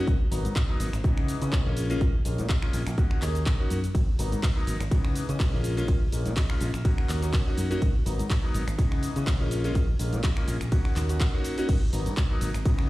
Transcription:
0.07 G#1, kick, closed hi-hat, shaker
0.31 G#1 F#3 A#3 B3 D#4, open hi-hat, shaker
0.45 G#2, closed hi-hat, shaker
0.56 kick, clap, closed hi-hat, shaker
0.69 F#3 A#3 B3 D#4
0.80 G#1, open hi-hat, shaker
0.93 G#1, finger snap, closed hi-hat, shaker
1.04 C#3 E3 G#3 B3 D#4, kick, closed hi-hat, shaker
1.18 finger snap
1.28 open hi-hat, shaker
1.41 C#3 E3 G#3 B3 C#4, closed hi-hat, shaker
1.52 kick, clap, closed hi-hat, shaker
1.66 A#1 G#3 A#3 C#4 F4
1.77 open hi-hat, shaker
1.90 G#3 A#3 C#4 F4, closed hi-hat, shaker
2.01 A#1, kick, closed hi-hat, shaker
2.25 A#1 G#3 A#3 C#4 F4, open hi-hat, shaker
2.38 A#2, closed hi-hat, shaker
2.49 kick, clap, closed hi-hat, shaker
2.62 G#3 A#3 C#4 F4, finger snap
2.73 A#1, open hi-hat, shaker
2.87 A#1, finger snap, closed hi-hat, shaker
2.98 A#3 C#4 D#4 F#4, kick, closed hi-hat, shaker
3.11 finger snap
3.22 D#2 A#3 C#4 D#4 G#4, clap, open hi-hat, shaker
3.35 closed hi-hat, shaker
3.46 kick, clap, open hi-hat, shaker
3.59 A#3 C#4 D#4 F#4
3.70 F#2, open hi-hat, shaker
3.84 closed hi-hat, shaker
3.95 G#1, kick, closed hi-hat, ride, shaker
4.19 G#1 F#3 A#3 B3 D#4, open hi-hat, shaker
4.32 G#2, closed hi-hat, shaker
4.43 kick, clap, closed hi-hat, ride, shaker
4.56 F#3 A#3 B3 D#4
4.67 G#1, open hi-hat, shaker
4.80 G#1, finger snap, closed hi-hat, shaker
4.91 C#3 E3 G#3 B3 D#4, kick, closed hi-hat, ride, shaker
5.05 finger snap
5.15 open hi-hat, shaker
5.28 C#3 E3 G#3 B3 C#4, closed hi-hat, shaker
5.40 kick, clap, closed hi-hat, ride, shaker
5.53 A#1 G#3 A#3 C#4 F4
5.64 open hi-hat, shaker
5.77 G#3 A#3 C#4 F4, closed hi-hat, shaker
5.88 A#1, kick, closed hi-hat, ride, shaker
6.12 A#1 G#3 A#3 C#4 F4, open hi-hat, shaker
6.26 A#2, closed hi-hat, shaker
6.37 kick, clap, closed hi-hat, ride, shaker
6.50 G#3 A#3 C#4 F4, finger snap
6.61 A#1, open hi-hat, shaker
6.74 A#1, finger snap, closed hi-hat, shaker
6.85 A#3 C#4 D#4 F#4, kick, closed hi-hat, ride, shaker
6.98 finger snap
7.09 D#2, clap, open hi-hat, shaker
7.22 A#3 C#4 D#4 F#4, closed hi-hat, shaker
7.33 kick, clap, open hi-hat, ride, shaker
7.46 A#3 C#4 D#4 F#4
7.58 F#2, open hi-hat, shaker
7.70 A#3 C#4 D#4 F#4, closed hi-hat, shaker
7.82 G#1, kick, closed hi-hat, ride, shaker
8.06 G#1 F#3 A#3 B3 D#4, open hi-hat, shaker
8.19 G#2, closed hi-hat, shaker
8.30 kick, clap, closed hi-hat, ride, shaker
8.43 F#3 A#3 B3 D#4
8.54 G#1, open hi-hat, shaker
8.68 G#1, finger snap, closed hi-hat, shaker
8.78 C#3 E3 G#3 B3 D#4, kick, closed hi-hat, ride, shaker
8.92 finger snap
9.03 open hi-hat, shaker
9.16 C#3 E3 G#3 B3 C#4, closed hi-hat, shaker
9.27 kick, clap, closed hi-hat, ride, shaker
9.40 A#1 G#3 A#3 C#4 F4
9.51 open hi-hat, shaker
9.64 G#3 A#3 C#4 F4, closed hi-hat, shaker
9.75 A#1, kick, closed hi-hat, ride, shaker
9.99 A#1 G#3 A#3 C#4 F4, open hi-hat, shaker
10.13 A#2, closed hi-hat, shaker
10.24 kick, clap, closed hi-hat, ride, shaker
10.37 G#3 A#3 C#4 F4, finger snap
10.48 A#1, open hi-hat, shaker
10.61 A#1, finger snap, closed hi-hat, shaker
10.72 A#3 C#4 D#4 F#4, kick, closed hi-hat, ride, shaker
10.85 finger snap
10.96 D#2, clap, open hi-hat, shaker
11.09 A#3 C#4 D#4 F#4, closed hi-hat, shaker
11.20 kick, clap, open hi-hat, ride, shaker
11.34 A#3 C#4 D#4 F#4
11.44 open hi-hat, shaker
11.58 A#3 C#4 D#4 F#4, closed hi-hat, shaker
11.69 G#1, kick, closed hi-hat, crash, ride, shaker
11.93 G#1 F#3 A#3 B3 D#4, open hi-hat, shaker
12.06 G#2, closed hi-hat, shaker
12.17 kick, clap, closed hi-hat, ride, shaker
12.30 F#3 A#3 B3 D#4
12.41 G#1, open hi-hat, shaker
12.54 G#1, finger snap, closed hi-hat, shaker
12.65 C#3 E3 G#3 B3 D#4, kick, closed hi-hat, ride, shaker
12.79 finger snap

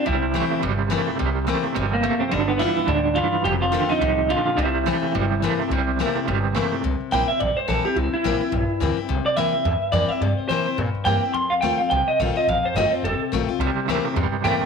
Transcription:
0.06 C2 C3 G3 E4
0.34 C3 E3 A3 C4 E4
0.53 muted upright bass stroke
0.63 G1 G2 C3 G3
0.90 C3 E3 A3 A#3 C4 E4
1.06 C4 E4, muted upright bass stroke
1.19 C2 C3 G3
1.47 C3 E3 A3 A#3 C4 E4
1.63 C4 E4, muted upright bass stroke
1.75 G1 C3 E3 G3
1.93 A#3
2.03 C3 F3 A3
2.20 C4, muted upright bass stroke
2.31 G1 G2 D3 G3 D4
2.48 B3
2.59 G2 E3 G3 B3 E4 F4
2.77 B3 F4, muted upright bass stroke
2.87 D2 G2 A2 D3 D4
3.15 G2 E3 F4
3.32 muted upright bass stroke
3.44 F1 F2 C3 G4
3.62 F4
3.72 F2 D3 D#3 A3 C4 F4
3.89 C4 D#4 F4, muted upright bass stroke
4.01 C2 F2 A2 C3
4.29 F2 A#2 D3 F4
4.45 F4, muted upright bass stroke
4.56 C2 C3 G3 E4
4.86 C3 E3 A3 C4 E4
5.02 muted upright bass stroke
5.15 G1 G2 C3 G3
5.42 C3 E3 A3 A#3 C4 E4
5.59 C4 E4, muted upright bass stroke
5.70 C2 C3 G3
5.99 C3 E3 A3 A#3 C4 E4
6.15 C4 E4, muted upright bass stroke
6.27 G1 G2 C3 G3
6.55 C3 E3 A3 A#3 C4 E4
6.72 C4 E4, muted upright bass stroke
6.84 C2 C3
7.00 muted upright bass stroke
7.11 A#1 E3 A#3 C4 E4 G5
7.28 C4 E4 E5
7.40 A1 G2 D5
7.56 C5, muted upright bass stroke
7.68 A#1 E3 A#3 C4 E4 A4
7.85 C4 E4 G4
7.96 C2 C3 E4
8.13 E4, muted upright bass stroke
8.24 A1 E3 A#3 C4 E4
8.41 C4 E4, muted upright bass stroke
8.52 A#1 G2
8.69 muted upright bass stroke
8.80 D2 E3 A#3 C4 E4
8.97 C4 E4
9.09 C2 C3
9.26 D5, muted upright bass stroke
9.37 D2 E3 A#3 C4 E4 E5
9.52 C4 E4, muted upright bass stroke
9.65 E2 G2
9.82 muted upright bass stroke
9.92 F2 E3 A#3 C4 E4 D5
10.09 C4 E4 E5, muted upright bass stroke
10.20 G2 C3 D5
10.37 C5, muted upright bass stroke
10.49 A2 E3 A#3 C4 E4 C5
10.66 C4 E4, muted upright bass stroke
10.78 G2 A#2
10.95 muted upright bass stroke
11.05 G2 E3 A#3 C4 E4 G5
11.23 C4 E4
11.33 F2 C6
11.50 F5, muted upright bass stroke
11.61 D#2 D#3 A3 C4 F4 G5
11.78 C4 F4 F5, muted upright bass stroke
11.90 C2 C3 G5
12.07 D#5, muted upright bass stroke
12.19 A#1 D#3 A3 C4 F4 F5
12.36 C4 F4 D#5
12.47 A1 F2 F5
12.63 C5, muted upright bass stroke
12.74 G1 D#3 A3 C4 F4 D#5
12.92 C4 F4 C5
13.03 F1 C3 A4
13.19 muted upright bass stroke
13.32 A1 D#3 A3 C4 F4
13.48 C4 F4, muted upright bass stroke
13.59 C2 C3 G3
13.75 muted upright bass stroke
13.87 D2 C3 E3 A3 A#3 C4 E4
14.05 C4 E4
14.16 E2 G2 C3 G3
14.32 muted upright bass stroke
14.44 A2 C3 E3 A3 A#3 C4 E4 G5
14.61 E4, muted upright bass stroke

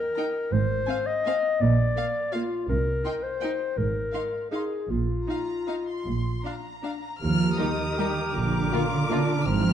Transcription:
Already playing: A#4
0.15 D#4 G5 A#5
0.52 G#1 G#2 C5
0.87 C4 F5 G#5
1.06 D#5
1.25 C4 F5 G#5
1.61 A#1 A#2 D5
1.96 A#3 F5
2.33 A#3 F4 F5
2.69 C2 C3 A#4
3.05 D#4 G5 C6
3.23 C5
3.41 D#4 G5 C6
3.77 G#1 G#2 A#4
4.13 D#4 F5 C6
4.51 D#4 G#4 F5 C6
4.90 A#1 A#2 F4
5.27 D#4 F5 A#5
5.67 D#4 F5
5.88 C6
6.06 A#1 A#2
6.44 D4 F5 A#5
6.83 D4 F5
7.20 D#2 F3 G4 A#4 A#5 F6
7.58 D#3 G3 A#3 D#4 G4 A#4 D#6
7.97 G3 A#3 D#4 G4 A#4
8.34 A#1 D3 F4 D6
8.71 A#3 F4 A#4
9.09 A#3 D4 F4 A#4
9.45 G#1 F3 C4 D4 A#4 A#5 F6

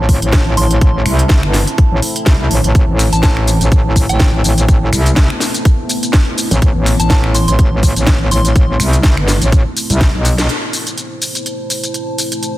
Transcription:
Already playing: A1 A3 C4 E4 C5 A5
0.09 kick, open hi-hat
0.22 A1, closed hi-hat
0.32 kick, snare, closed hi-hat
0.57 A1 C6, open hi-hat
0.71 closed hi-hat
0.81 kick, closed hi-hat
1.06 C2, finger snap, open hi-hat
1.19 closed hi-hat
1.29 kick, snare, closed hi-hat
1.43 G1, finger snap
1.53 snare, open hi-hat
1.67 closed hi-hat
1.78 kick, closed hi-hat
1.92 A1
2.02 open hi-hat
2.16 closed hi-hat
2.26 C2, kick, snare, closed hi-hat
2.51 A1, open hi-hat
2.64 A1, closed hi-hat
2.75 A1 B3, kick, closed hi-hat, shaker
2.88 A1
2.99 finger snap, open hi-hat, shaker
3.13 A1 A5, closed hi-hat, shaker
3.23 A5, kick, snare, closed hi-hat, shaker
3.37 finger snap
3.48 open hi-hat, shaker
3.61 A1, closed hi-hat, shaker
3.72 kick, closed hi-hat, shaker
3.96 kick, open hi-hat, shaker
4.09 A1 G5, closed hi-hat, shaker
4.20 kick, snare, closed hi-hat, shaker
4.44 A1, open hi-hat, shaker
4.58 closed hi-hat, shaker
4.68 kick, closed hi-hat, shaker
4.93 C2, finger snap, open hi-hat, shaker
5.06 closed hi-hat, shaker
5.16 kick, snare, closed hi-hat, shaker
5.30 finger snap
5.40 snare, open hi-hat, shaker
5.54 closed hi-hat, shaker
5.65 kick, closed hi-hat, shaker
5.89 open hi-hat, shaker
6.03 closed hi-hat, shaker
6.13 kick, snare, closed hi-hat, shaker
6.38 open hi-hat, shaker
6.51 A1, closed hi-hat, shaker
6.62 A1, kick, closed hi-hat, shaker
6.75 A1
6.86 finger snap, open hi-hat, shaker
7.00 A1 A5, closed hi-hat, shaker
7.10 A5, kick, snare, closed hi-hat, shaker
7.24 finger snap
7.35 C6, open hi-hat, shaker
7.48 A1 C6, closed hi-hat, shaker
7.59 kick, closed hi-hat, shaker
7.83 kick, open hi-hat, shaker
7.96 A1, closed hi-hat, shaker
8.07 kick, snare, closed hi-hat, shaker
8.31 A1 C6, open hi-hat, shaker
8.45 closed hi-hat, shaker
8.56 kick, closed hi-hat, shaker
8.80 C2, finger snap, open hi-hat, shaker
8.93 closed hi-hat, shaker
9.03 kick, snare, closed hi-hat, shaker
9.17 G1, finger snap
9.28 snare, open hi-hat, shaker
9.42 A1, closed hi-hat, shaker
9.52 kick, closed hi-hat, shaker
9.77 open hi-hat, shaker
9.90 C2, closed hi-hat, shaker
10.01 kick, snare, closed hi-hat, shaker
10.14 B1
10.25 open hi-hat, shaker
10.38 snare, closed hi-hat, shaker
10.49 A3 C4 E4 C5, closed hi-hat, shaker
10.71 C5, open hi-hat, shaker
10.87 closed hi-hat, shaker
10.98 closed hi-hat, shaker
11.14 A5
11.22 open hi-hat, shaker
11.35 closed hi-hat, shaker
11.46 closed hi-hat, shaker
11.70 open hi-hat, shaker
11.84 closed hi-hat, shaker
11.94 closed hi-hat, shaker
12.18 open hi-hat, shaker
12.32 closed hi-hat, shaker
12.43 closed hi-hat, shaker

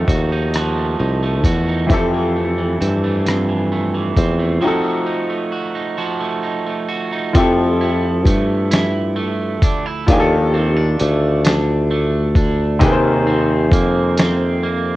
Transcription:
Already playing: D#3 F3 A3 C4 D#4 F#4 A4
0.07 D#2 F#4, kick, closed hi-hat
0.32 D#4
0.54 F3 F#4, cross-stick, closed hi-hat
0.78 A3
0.99 C2 D#4
1.23 A3
1.44 E2 F#4, kick, closed hi-hat
1.69 D#4
1.87 F2 E3 C4 E4, kick, closed hi-hat
1.91 F2 C4 G4 A4
2.14 E3
2.36 A3
2.58 E3
2.81 G2 C4, closed hi-hat
3.04 A3
3.26 F2 C4, cross-stick, closed hi-hat
3.49 E3
3.72 A3
3.94 E3
4.16 E2 C4, kick, closed hi-hat
4.39 A3
4.61 F3 C4 D#4 F#4
4.66 F#4 A4
4.84 A3
5.06 D#4
5.30 A3
5.52 F#4
5.75 D#4
5.98 F3 F#4
6.20 A3
6.43 D#4
6.66 A3
6.89 F#4
7.12 D#4
7.33 F2 F3 C4 E4, kick, closed hi-hat
7.38 G4 A4
7.81 E4
8.26 G2 A3, kick, closed hi-hat
8.71 E4, snare, closed hi-hat
9.16 A3
9.62 D2 D4, kick, closed hi-hat
9.86 E4
10.06 D#2 D#3 F3 D4 F4, kick, closed hi-hat
10.11 G4 G#4
10.20 A4
10.54 C4
10.76 D4
10.99 D2 A3, closed hi-hat
11.45 D4, snare, closed hi-hat
11.91 A3
12.35 D4, kick, closed hi-hat
12.79 D#2 C3 D#3 D#4 G4 G#4, kick, closed hi-hat
12.84 A#4 B4
12.92 C5
13.27 C4
13.71 F2 A#3, kick, closed hi-hat
14.17 C4, snare, closed hi-hat
14.63 A#3

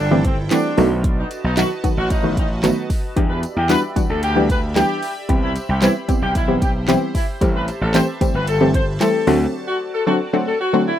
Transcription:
Already playing: G1 E4 A4 C5 G5
0.00 D4
0.11 E3 G3 A3 C4 G4
0.24 C4, kick, closed hi-hat
0.51 E3 G3 A3 C4 D4 F#4, clap, closed hi-hat, tambourine
0.77 B1 D#3 F#3 A3 B3 F#4 B4 D#5 A5, open hi-hat, tambourine
1.04 kick, closed hi-hat
1.18 D#4
1.31 closed hi-hat, tambourine
1.44 B1 D#4
1.57 D#3 F#3 A3 B3 F#4, clap, closed hi-hat, tambourine
1.84 D#3 F#3 A3 B3 F#4, kick, closed hi-hat, tambourine
1.97 A1 F#4
2.10 D#4, kick, closed hi-hat, tambourine
2.23 D#3 F#3 A3 B3 F#4
2.37 D#4, kick, closed hi-hat
2.63 D#3 F#3 A3 B3 F#4, clap, closed hi-hat, tambourine
2.90 kick, open hi-hat, tambourine
3.16 E2 E3 G3 B3 D4 G4 D5 E5 B5, kick, closed hi-hat
3.30 B4
3.43 closed hi-hat, tambourine
3.56 E2 G4
3.69 E3 G3 B3 D4 F#4 B4, clap, closed hi-hat, tambourine
3.96 E3 G3 B3 D4 F#4, kick, closed hi-hat, tambourine
4.10 D2 A4
4.23 G4, closed hi-hat, tambourine
4.36 E3 G3 B3 D4 G4
4.49 B4, kick, closed hi-hat, tambourine
4.76 E3 G3 B3 D4 G4, clap, closed hi-hat, tambourine
5.03 open hi-hat, tambourine
5.29 C2 E3 G3 B3 C4 G4 C5, kick, closed hi-hat
5.42 E4
5.56 closed hi-hat, tambourine
5.69 C2 G4
5.82 E3 G3 B3 C4 E4 G4, clap, closed hi-hat, tambourine
6.08 E3 G3 B3 C4 G4, kick, closed hi-hat, tambourine
6.22 B1 G4
6.35 E4, kick, closed hi-hat, tambourine
6.48 E3 G3 B3 C4 G4
6.62 G4, kick, closed hi-hat, tambourine
6.88 E3 G3 B3 C4 G4, clap, closed hi-hat, tambourine
7.15 E4, kick, open hi-hat, tambourine
7.41 A1 E3 G3 A3 C4 G4 E5 A5, kick, closed hi-hat, tambourine
7.55 B4
7.68 closed hi-hat, tambourine
7.81 A1 A4
7.94 E3 G3 A3 C4 G4 C5, clap, closed hi-hat, tambourine
8.21 E3 G3 A3 C4 G4, kick, closed hi-hat, tambourine
8.34 G1 B4
8.47 A4, closed hi-hat, tambourine
8.61 E3 G3 A3 C4 G4
8.74 C5, kick, closed hi-hat
9.00 E3 G3 A3 C4 G4 A4, clap, closed hi-hat, tambourine
9.27 D2 D3 F#3 A3 C4 F#4 D5, open hi-hat, tambourine
9.67 F#4
9.94 A4
10.07 D3 F#3 A3 C4 F#4 A4
10.33 D3 F#3 A3 C4 F#4
10.47 A4
10.60 F#4
10.73 D3 F#3 A3 C4 F#4
10.86 E4

